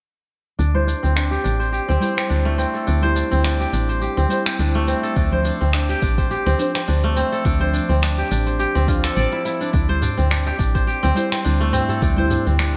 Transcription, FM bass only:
0.59 0.94 D2 medium
1.04 1.38 D2 medium
1.45 1.80 A1 medium
1.90 1.98 D2 medium
2.31 2.66 D2 medium
2.88 3.23 D2 medium
3.33 3.66 D2 medium
3.73 4.08 A1 medium
4.18 4.26 D2 medium
4.59 4.94 D2 medium
5.17 5.52 D2 loud
5.62 5.95 D2 medium
6.02 6.37 A1 medium
6.47 6.55 D2 medium
6.89 7.23 D2 medium
7.45 7.80 D2 loud
7.89 8.23 D2 medium
8.31 8.66 A1 medium
8.76 9.09 D2 medium
9.17 9.27 A1 medium
9.74 10.09 D2 medium
10.19 10.52 D2 medium
10.59 10.94 A1 medium
11.04 11.12 D2 loud
11.46 11.80 D2 medium
12.02 12.37 D2 medium
12.47 12.77 D2 medium

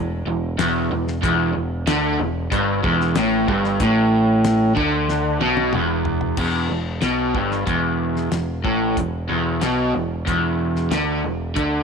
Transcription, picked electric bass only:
0.00 0.24 E1 medium
0.26 0.56 E1 medium
0.58 0.89 E1 medium
0.91 1.21 E1 medium
1.23 1.53 E1 loud
1.56 1.86 E1 medium
1.87 2.17 D2 medium
2.19 2.50 E1 medium
2.51 2.82 G1 medium
2.84 3.14 E1 medium
3.16 3.46 A1 medium
3.48 3.78 G1 medium
3.80 4.73 A1 medium
4.76 5.37 D2 loud
5.41 5.72 B1 medium
5.73 6.35 E1 medium
6.37 6.68 E1 medium
6.70 7.01 E1 medium
7.02 7.33 B1 medium
7.34 7.65 G1 medium
7.66 8.28 E1 medium
8.32 8.63 E1 medium
8.64 8.95 A1 medium
8.97 9.27 E1 medium
9.30 9.60 E1 medium
9.62 9.92 B1 medium
9.95 10.25 E1 medium
10.27 10.88 E1 medium
10.91 11.22 D2 medium
11.24 11.54 E1 medium
11.56 11.83 D2 medium

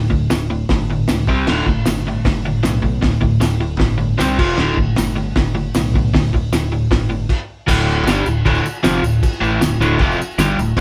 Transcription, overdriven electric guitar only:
0.10 0.28 D2 medium
0.10 0.28 A2 medium
0.30 0.48 D2 medium
0.30 0.48 A2 medium
0.50 0.68 D2 medium
0.50 0.68 A2 medium
0.70 0.88 D2 medium
0.70 0.88 A2 medium
0.90 1.07 D2 medium
0.90 1.07 A2 medium
1.08 1.26 D2 medium
1.08 1.26 A2 medium
1.28 1.46 C3 medium
1.28 1.46 G3 medium
1.28 1.47 C4 medium
1.48 1.66 D2 medium
1.48 1.66 A2 medium
1.48 1.66 D3 medium
1.68 1.85 D2 medium
1.68 1.85 A2 medium
1.86 2.04 D2 medium
1.86 2.04 A2 medium
2.07 2.24 D2 medium
2.07 2.24 A2 medium
2.25 2.43 D2 medium
2.25 2.43 A2 medium
2.45 2.62 D2 medium
2.45 2.62 A2 medium
2.63 2.81 D2 medium
2.63 2.81 A2 medium
2.83 3.01 D2 medium
2.83 3.01 A2 medium
3.02 3.20 D2 medium
3.02 3.20 A2 medium
3.21 3.39 D2 medium
3.21 3.39 A2 medium
3.40 3.58 D2 medium
3.40 3.59 A2 medium
3.60 3.77 D2 medium
3.60 3.78 A2 medium
3.79 3.96 D2 medium
3.79 3.97 A2 medium
3.98 4.16 D2 medium
3.98 4.16 A2 medium
4.18 4.37 C3 medium
4.18 4.37 G3 loud
4.18 4.37 C4 loud
4.38 4.57 F2 medium
4.38 4.57 C3 medium
4.38 4.57 F3 loud
4.58 4.76 D2 medium
4.58 4.76 A2 medium
4.58 4.77 D3 medium
4.77 4.95 D2 medium
4.77 4.95 A2 medium
4.97 5.15 D2 medium
4.97 5.15 A2 medium
5.16 5.34 D2 medium
5.16 5.34 A2 medium
5.37 5.54 D2 medium
5.37 5.54 A2 medium
5.55 5.73 D2 medium
5.55 5.73 A2 medium
5.76 5.93 D2 medium
5.76 5.93 A2 medium
5.95 6.12 D2 medium
5.95 6.12 A2 medium
6.14 6.31 D2 medium
6.14 6.31 A2 medium
6.34 6.51 D2 medium
6.34 6.51 A2 medium
6.53 6.70 D2 medium
6.53 6.70 A2 medium
6.72 6.89 D2 medium
6.72 6.89 A2 medium
6.91 7.08 D2 medium
6.91 7.09 A2 medium
7.09 7.27 D2 medium
7.09 7.27 A2 medium
7.67 8.05 D2 medium
7.67 8.06 A2 loud
7.67 8.06 D3 loud
8.06 8.25 G2 medium
8.06 8.26 D3 loud
8.06 8.26 G3 loud
8.26 8.42 D2 medium
8.26 8.42 A2 medium
8.45 8.63 D2 loud
8.45 8.64 A2 loud
8.45 8.64 D3 loud
8.65 muted overdriven electric guitar stroke medium
8.83 9.02 F2 medium
8.83 9.02 C3 loud
8.83 9.03 F3 loud
9.03 9.19 D2 medium
9.03 9.19 A2 medium
9.41 9.60 A2 loud
9.41 9.60 E3 loud
9.41 9.61 A3 loud
9.62 9.77 D2 medium
9.62 9.77 A2 medium
9.81 9.99 D2 medium
9.81 10.00 A2 loud
9.81 10.00 D3 loud
10.00 10.19 F2 loud
10.00 10.19 C3 loud
10.00 10.19 F3 loud
10.20 muted overdriven electric guitar stroke medium
10.38 10.57 G2 loud
10.38 10.58 D3 loud
10.38 10.58 G3 loud
10.59 10.73 D2 medium
10.59 10.74 A2 medium
10.77 10.80 D2 loud

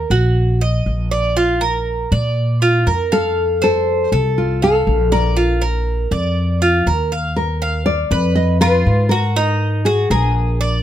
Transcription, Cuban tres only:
0.11 0.59 F#4 medium
0.61 1.10 D#5 medium
1.11 1.36 D5 medium
1.37 1.61 F4 medium
1.61 2.10 A#4 medium
2.12 2.60 D5 medium
2.62 2.86 F4 medium
2.87 3.11 A#4 medium
3.12 3.60 F5 medium
3.62 4.10 C5 medium
4.12 4.61 A4 medium
4.62 5.11 F5 medium
5.12 5.36 D5 medium
5.37 5.61 F4 medium
5.62 6.10 A#4 medium
6.12 6.60 D5 medium
6.62 6.86 F4 medium
6.87 7.11 A#4 medium
7.12 7.36 F5 medium
7.62 8.10 F5 medium
8.11 8.60 B4 medium
8.62 9.10 F4 medium
9.11 9.35 F#4 medium
9.36 9.85 D#4 medium
9.86 10.10 F#4 medium
10.11 10.59 G#4 medium
10.61 10.83 D5 medium

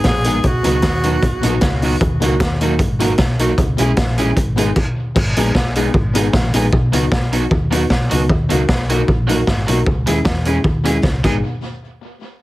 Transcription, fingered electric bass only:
0.05 0.38 A#1 medium
0.44 0.62 B1 loud
0.65 0.81 C#2 medium
0.83 1.17 D#2 medium
1.22 1.40 B1 medium
1.43 1.59 A#1 loud
1.62 1.95 C#2 medium
2.01 2.19 D#2 loud
2.22 2.38 C#2 medium
2.40 2.81 D#2 medium
2.79 3.13 G#1 medium
3.19 3.52 B1 medium
3.58 3.76 C#2 loud
3.79 3.95 B1 loud
3.97 4.31 A#1 loud
4.37 4.70 G#1 loud
5.16 5.33 G#1 loud
5.37 5.52 A#1 loud
5.94 6.27 G#1 loud
6.34 6.51 A#1 medium
6.54 6.70 A#1 medium
6.73 6.94 B1 loud
6.94 7.09 C#2 loud
7.12 7.45 B1 medium
7.51 7.84 D#2 loud
7.91 8.08 B1 medium
8.12 8.27 C#2 loud
8.29 8.47 D#2 loud
8.51 8.66 C#2 loud
8.69 9.02 B1 loud
9.08 9.41 A#1 medium
9.48 9.65 G#1 medium
9.68 9.84 B1 medium
9.87 10.04 C#2 loud
10.08 10.23 D#2 medium
10.25 10.58 E2 medium
10.64 10.97 D#2 medium
11.03 11.21 C#2 medium
11.24 11.41 G#1 medium

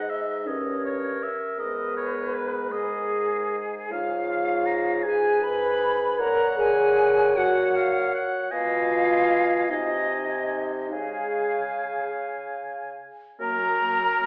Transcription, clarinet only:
0.00 0.46 B4 soft
0.46 3.59 A#4 medium
3.91 5.07 C#5 medium
5.05 6.20 B4 medium
6.20 8.48 C#5 medium
8.51 9.68 D#5 medium
9.70 10.60 D#5 medium
10.91 13.02 F5 medium

